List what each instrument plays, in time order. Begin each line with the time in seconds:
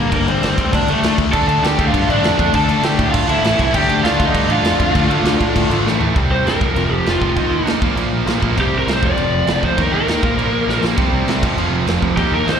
Already playing: distorted electric guitar D3 G3 D4, overdriven electric guitar D3 G3 D4, lead electric guitar A#4
0.11 picked electric bass G1, distorted electric guitar G2 D3 G3, lead electric guitar A#3 A#4, kick, crash
0.26 distorted electric guitar G2 D3 G3, lead electric guitar C4 C5, crash
0.42 picked electric bass G1, distorted electric guitar G2 D3 G3, snare, crash
0.58 picked electric bass D2, distorted electric guitar G2 D3 G3, kick, crash
0.73 picked electric bass D2, distorted electric guitar G2 D3 G3, lead electric guitar D4 D5, kick, crash
0.88 picked electric bass C#2, distorted electric guitar G2 D3 G3, lead electric guitar A3 A4, crash
1.02 picked electric bass D2, distorted electric guitar D3 A3 D4, snare, crash
1.18 picked electric bass D2, distorted electric guitar D3 A3 D4, kick, crash
1.33 picked electric bass D2, distorted electric guitar D3 A3 D4, lead electric guitar A4 A5, kick, crash
1.47 picked electric bass D2, distorted electric guitar D3 A3 D4, lead electric guitar A4 A5, crash
1.63 picked electric bass D2, distorted electric guitar D3 A3 D4, lead electric guitar G4 G5, snare, crash
1.79 picked electric bass D2, distorted electric guitar D3 A3 D4, kick, crash
1.87 lead electric guitar F4 F5
1.93 picked electric bass G2, distorted electric guitar D3 A3 D4, kick, crash
2.08 picked electric bass A1, distorted electric guitar D3 A3 D4, lead electric guitar D4 D5, crash
2.23 picked electric bass F2, distorted electric guitar D3 A3 D4, snare, crash
2.39 picked electric bass F2, distorted electric guitar D3 A3 D4, kick, crash
2.53 picked electric bass D2, distorted electric guitar D3 A3 D4, lead electric guitar A5, kick, crash
2.57 lead electric guitar A4
2.68 distorted electric guitar D3 A3 D4, crash
2.83 picked electric bass D2, distorted electric guitar D3 A3 D4, lead electric guitar G4 G5, snare, crash
2.99 picked electric bass A2, distorted electric guitar D3 A3 D4, kick, crash
3.09 distorted electric guitar D3, lead electric guitar F4 F5
3.14 picked electric bass A2, distorted electric guitar A3 D4, kick, crash
3.27 picked electric bass D2, distorted electric guitar D3 A3 D4, lead electric guitar E4 E5, crash
3.42 picked electric bass A1, distorted electric guitar A2 E3 A3, snare, crash
3.59 picked electric bass C2, distorted electric guitar A2 E3 A3, kick, crash
3.74 picked electric bass D2, distorted electric guitar D3 A3 D4, lead electric guitar G4 G5, kick, crash
3.89 picked electric bass D2, distorted electric guitar D3 A3 D4, crash
4.03 picked electric bass D2, distorted electric guitar D3 A3, lead electric guitar F4 F5, snare, crash
4.07 distorted electric guitar D4
4.20 picked electric bass D2, distorted electric guitar D3 A3 D4, kick, crash
4.26 lead electric guitar D#4 D#5
4.34 picked electric bass G2, distorted electric guitar D3 A3 D4, kick, crash
4.49 picked electric bass A1, distorted electric guitar D3 A3 D4, lead electric guitar F4 F5, crash
4.63 picked electric bass F2, distorted electric guitar D3 A3 D4, snare, crash
4.80 picked electric bass F2, distorted electric guitar D3 A3 D4, kick, crash
4.94 picked electric bass D2, distorted electric guitar D3 A3 D4, kick, crash
5.10 distorted electric guitar D3 A3 D4, crash
5.24 picked electric bass D2, distorted electric guitar D3 A3 D4, snare, crash
5.40 picked electric bass A2, distorted electric guitar D3 A3 D4, kick, crash
5.55 picked electric bass A2, distorted electric guitar D3 A3 D4, kick, crash
5.70 picked electric bass G#1, distorted electric guitar D3 A3 D4, crash
5.85 picked electric bass A1, distorted electric guitar A2 E3 A3, snare
6.00 picked electric bass A1, distorted electric guitar A2 E3 A3, floor tom
6.15 picked electric bass C2, distorted electric guitar C3 G3 C4, kick, crash
6.30 picked electric bass C2, lead electric guitar C5
6.45 picked electric bass G2, distorted electric guitar C3 G3 C4, lead electric guitar A#4, snare, crash
6.61 picked electric bass F1, distorted electric guitar F2 C3 F3, kick
6.76 picked electric bass F1, distorted electric guitar F2 C3 F3, crash
6.91 picked electric bass F1, lead electric guitar G4
7.06 picked electric bass F1, distorted electric guitar F2 C3 F3, lead electric guitar F4, snare, crash
7.21 picked electric bass F1, distorted electric guitar F2 C3 F3, kick
7.36 picked electric bass D#2, distorted electric guitar D#3 A#3 D#4, kick, crash
7.51 picked electric bass D#2
7.66 picked electric bass D#2, distorted electric guitar D#3 A#3 D#4, snare, crash
7.80 picked electric bass A#1, distorted electric guitar A#2 F3 A#3, kick
7.96 picked electric bass A#1, distorted electric guitar A#2 F3 A#3, crash
8.13 picked electric bass A#1
8.26 picked electric bass A#1, distorted electric guitar A#2 F3 A#3, snare, crash
8.41 picked electric bass A#1, distorted electric guitar A#2 F3 A#3, kick
8.57 picked electric bass C2, distorted electric guitar C3 G3 C4, kick, crash
8.61 lead electric guitar G4
8.72 picked electric bass C2
8.78 lead electric guitar A#4
8.87 picked electric bass C2, distorted electric guitar C3 G3 C4, snare, crash
8.93 lead electric guitar C5
9.03 picked electric bass F1, distorted electric guitar F2 C3 F3, lead electric guitar D5, kick
9.16 picked electric bass F1, distorted electric guitar F2 C3 F3, crash
9.33 picked electric bass F1
9.47 picked electric bass F1, distorted electric guitar F2 C3 F3, snare, crash
9.63 picked electric bass F1, distorted electric guitar F2 C3 F3, lead electric guitar C5, kick
9.78 picked electric bass D#2, distorted electric guitar D#3 A#3 D#4, lead electric guitar A#4, kick, crash
9.93 picked electric bass D#2, lead electric guitar A#4
10.07 picked electric bass D#2, distorted electric guitar D#3 A#3 D#4, snare, crash
10.23 picked electric bass A#1, distorted electric guitar A#2 F3 A#3, kick
10.37 picked electric bass A#1, distorted electric guitar A#2 F3 A#3, crash
10.53 picked electric bass A#1
10.67 picked electric bass A#1, distorted electric guitar A#2 F3 A#3, snare
10.83 picked electric bass A#1, distorted electric guitar A#2 F3 A#3, snare
10.97 picked electric bass C2, distorted electric guitar C3 G3 C4, kick, crash
11.13 picked electric bass C2
11.28 picked electric bass C2, distorted electric guitar C3 G3 C4, snare, crash
11.43 picked electric bass F1, distorted electric guitar F2 C3 F3, kick, crash
11.57 picked electric bass F1, distorted electric guitar F2 C3 F3, crash
11.72 picked electric bass F1
11.87 picked electric bass F1, distorted electric guitar F2 C3 F3, snare, crash
12.02 picked electric bass F1, distorted electric guitar F2 C3 F3, kick
12.17 picked electric bass D#2, distorted electric guitar D#3 A#3 D#4, lead electric guitar G4, kick, crash
12.32 picked electric bass D#2, lead electric guitar A#4
12.46 picked electric bass D#2, distorted electric guitar D#3 A#3 D#4, lead electric guitar C5, snare, crash